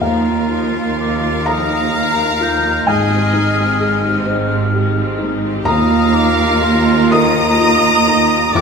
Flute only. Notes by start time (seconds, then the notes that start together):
0.01 A#5
0.51 C6
1.00 D6
1.47 D#6
1.95 F6
2.43 G6
2.88 F6
5.66 D#6
6.14 D6
6.63 C6
7.13 A#5
8.54 G5